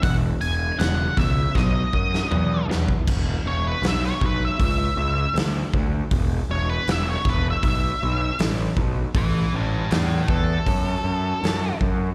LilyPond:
<<
  \new Staff \with { instrumentName = "Lead electric guitar" } { \time 4/4 \key a \major \tempo 4 = 79 fis''8 gis''8 fis''8 e''8 dis''4. r8 | r8 cis''16 b'16 e''16 cis''16 b'16 e''16 e''4 r4 | r8 cis''16 b'16 e''16 cis''16 b'16 e''16 e''4 r4 | <b' e''>8 <g' b'>8 <e' a'>8 a'2 r8 | }
  \new Staff \with { instrumentName = "Overdriven electric guitar" } { \clef bass \time 4/4 \key a \major <e, b,>4 <e, cis>8 <e, b,>8 <b, fis>4 <b, fis>8 <b, fis>8 | r1 | r1 | r1 | }
  \new Staff \with { instrumentName = "Picked electric bass" } { \clef bass \time 4/4 \key a \major e,,8 e,,8 e,,8 cis,8 b,,8 fis,8 e,8 e,8 | e,,8 e,,8 b,,8 b,,8 cis,8 cis,8 d,8 d,8 | e,,8 e,,8 e,,8 e,,8 b,,8 b,,8 a,,8 b,,8 | a,,8 a,,8 e,8 e,8 fis,8 fis,8 fis,8 fis,8 | }
  \new DrumStaff \with { instrumentName = "Drums" } \drummode { \time 4/4 <hho bd>8 hho8 <hho sn>8 <hho bd sn>8 <bd sn>8 bd16 sn16 toml8 sn16 bd16 | <cymc bd>4 <hho sn>16 sn16 bd8 <hho bd>4 <hho sn>8 bd8 | <hho bd>4 <hho sn>8 <bd sn>8 <hho bd>4 <hho sn>8 bd8 | <hho bd>4 <hho sn>8 bd8 <hho bd>4 <hho sn>8 bd8 | }
>>